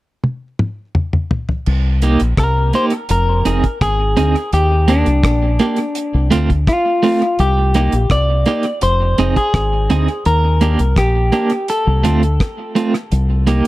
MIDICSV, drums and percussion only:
0, 0, Header, 1, 2, 480
1, 0, Start_track
1, 0, Key_signature, -3, "minor"
1, 0, Tempo, 715990
1, 1116, Time_signature, 4, 2, 24, 8
1, 9166, End_track
2, 0, Start_track
2, 0, Title_t, "Drums"
2, 158, Note_on_c, 9, 48, 56
2, 225, Note_off_c, 9, 48, 0
2, 397, Note_on_c, 9, 47, 70
2, 464, Note_off_c, 9, 47, 0
2, 636, Note_on_c, 9, 45, 79
2, 703, Note_off_c, 9, 45, 0
2, 759, Note_on_c, 9, 45, 74
2, 826, Note_off_c, 9, 45, 0
2, 877, Note_on_c, 9, 43, 94
2, 944, Note_off_c, 9, 43, 0
2, 997, Note_on_c, 9, 43, 82
2, 1064, Note_off_c, 9, 43, 0
2, 1115, Note_on_c, 9, 49, 73
2, 1182, Note_off_c, 9, 49, 0
2, 1353, Note_on_c, 9, 42, 62
2, 1420, Note_off_c, 9, 42, 0
2, 1473, Note_on_c, 9, 42, 54
2, 1540, Note_off_c, 9, 42, 0
2, 1592, Note_on_c, 9, 36, 110
2, 1594, Note_on_c, 9, 42, 83
2, 1597, Note_on_c, 9, 37, 102
2, 1659, Note_off_c, 9, 36, 0
2, 1661, Note_off_c, 9, 42, 0
2, 1664, Note_off_c, 9, 37, 0
2, 1832, Note_on_c, 9, 42, 61
2, 1899, Note_off_c, 9, 42, 0
2, 1946, Note_on_c, 9, 42, 61
2, 2013, Note_off_c, 9, 42, 0
2, 2071, Note_on_c, 9, 42, 101
2, 2138, Note_off_c, 9, 42, 0
2, 2315, Note_on_c, 9, 42, 65
2, 2382, Note_off_c, 9, 42, 0
2, 2439, Note_on_c, 9, 36, 58
2, 2439, Note_on_c, 9, 42, 48
2, 2506, Note_off_c, 9, 36, 0
2, 2506, Note_off_c, 9, 42, 0
2, 2555, Note_on_c, 9, 36, 99
2, 2558, Note_on_c, 9, 37, 100
2, 2558, Note_on_c, 9, 42, 79
2, 2622, Note_off_c, 9, 36, 0
2, 2625, Note_off_c, 9, 37, 0
2, 2625, Note_off_c, 9, 42, 0
2, 2795, Note_on_c, 9, 42, 85
2, 2862, Note_off_c, 9, 42, 0
2, 2920, Note_on_c, 9, 42, 47
2, 2987, Note_off_c, 9, 42, 0
2, 3034, Note_on_c, 9, 42, 68
2, 3101, Note_off_c, 9, 42, 0
2, 3271, Note_on_c, 9, 42, 63
2, 3338, Note_off_c, 9, 42, 0
2, 3393, Note_on_c, 9, 42, 49
2, 3460, Note_off_c, 9, 42, 0
2, 3510, Note_on_c, 9, 36, 108
2, 3514, Note_on_c, 9, 42, 89
2, 3517, Note_on_c, 9, 37, 104
2, 3577, Note_off_c, 9, 36, 0
2, 3581, Note_off_c, 9, 42, 0
2, 3584, Note_off_c, 9, 37, 0
2, 3749, Note_on_c, 9, 42, 60
2, 3816, Note_off_c, 9, 42, 0
2, 3864, Note_on_c, 9, 42, 52
2, 3931, Note_off_c, 9, 42, 0
2, 3989, Note_on_c, 9, 42, 100
2, 4057, Note_off_c, 9, 42, 0
2, 4234, Note_on_c, 9, 42, 67
2, 4301, Note_off_c, 9, 42, 0
2, 4357, Note_on_c, 9, 36, 56
2, 4358, Note_on_c, 9, 42, 47
2, 4424, Note_off_c, 9, 36, 0
2, 4425, Note_off_c, 9, 42, 0
2, 4474, Note_on_c, 9, 36, 100
2, 4478, Note_on_c, 9, 37, 90
2, 4478, Note_on_c, 9, 42, 78
2, 4541, Note_off_c, 9, 36, 0
2, 4545, Note_off_c, 9, 37, 0
2, 4545, Note_off_c, 9, 42, 0
2, 4714, Note_on_c, 9, 46, 60
2, 4781, Note_off_c, 9, 46, 0
2, 4839, Note_on_c, 9, 42, 46
2, 4906, Note_off_c, 9, 42, 0
2, 4952, Note_on_c, 9, 42, 77
2, 5019, Note_off_c, 9, 42, 0
2, 5190, Note_on_c, 9, 42, 65
2, 5257, Note_off_c, 9, 42, 0
2, 5311, Note_on_c, 9, 42, 52
2, 5378, Note_off_c, 9, 42, 0
2, 5429, Note_on_c, 9, 36, 105
2, 5432, Note_on_c, 9, 42, 89
2, 5436, Note_on_c, 9, 37, 99
2, 5496, Note_off_c, 9, 36, 0
2, 5499, Note_off_c, 9, 42, 0
2, 5503, Note_off_c, 9, 37, 0
2, 5669, Note_on_c, 9, 42, 58
2, 5736, Note_off_c, 9, 42, 0
2, 5785, Note_on_c, 9, 42, 54
2, 5852, Note_off_c, 9, 42, 0
2, 5909, Note_on_c, 9, 42, 96
2, 5976, Note_off_c, 9, 42, 0
2, 6154, Note_on_c, 9, 42, 70
2, 6221, Note_off_c, 9, 42, 0
2, 6277, Note_on_c, 9, 36, 56
2, 6278, Note_on_c, 9, 42, 49
2, 6344, Note_off_c, 9, 36, 0
2, 6345, Note_off_c, 9, 42, 0
2, 6395, Note_on_c, 9, 36, 108
2, 6399, Note_on_c, 9, 37, 88
2, 6399, Note_on_c, 9, 42, 73
2, 6462, Note_off_c, 9, 36, 0
2, 6466, Note_off_c, 9, 37, 0
2, 6466, Note_off_c, 9, 42, 0
2, 6636, Note_on_c, 9, 42, 79
2, 6703, Note_off_c, 9, 42, 0
2, 6760, Note_on_c, 9, 42, 42
2, 6827, Note_off_c, 9, 42, 0
2, 6874, Note_on_c, 9, 42, 74
2, 6941, Note_off_c, 9, 42, 0
2, 7112, Note_on_c, 9, 42, 62
2, 7179, Note_off_c, 9, 42, 0
2, 7233, Note_on_c, 9, 42, 53
2, 7300, Note_off_c, 9, 42, 0
2, 7350, Note_on_c, 9, 36, 106
2, 7356, Note_on_c, 9, 42, 90
2, 7359, Note_on_c, 9, 37, 102
2, 7417, Note_off_c, 9, 36, 0
2, 7423, Note_off_c, 9, 42, 0
2, 7426, Note_off_c, 9, 37, 0
2, 7591, Note_on_c, 9, 42, 58
2, 7658, Note_off_c, 9, 42, 0
2, 7707, Note_on_c, 9, 42, 57
2, 7774, Note_off_c, 9, 42, 0
2, 7832, Note_on_c, 9, 42, 92
2, 7899, Note_off_c, 9, 42, 0
2, 8074, Note_on_c, 9, 42, 66
2, 8141, Note_off_c, 9, 42, 0
2, 8198, Note_on_c, 9, 42, 48
2, 8265, Note_off_c, 9, 42, 0
2, 8315, Note_on_c, 9, 36, 104
2, 8318, Note_on_c, 9, 37, 104
2, 8318, Note_on_c, 9, 42, 79
2, 8382, Note_off_c, 9, 36, 0
2, 8385, Note_off_c, 9, 37, 0
2, 8386, Note_off_c, 9, 42, 0
2, 8555, Note_on_c, 9, 42, 80
2, 8622, Note_off_c, 9, 42, 0
2, 8677, Note_on_c, 9, 37, 56
2, 8679, Note_on_c, 9, 42, 43
2, 8744, Note_off_c, 9, 37, 0
2, 8746, Note_off_c, 9, 42, 0
2, 8793, Note_on_c, 9, 42, 67
2, 8860, Note_off_c, 9, 42, 0
2, 9031, Note_on_c, 9, 42, 60
2, 9098, Note_off_c, 9, 42, 0
2, 9166, End_track
0, 0, End_of_file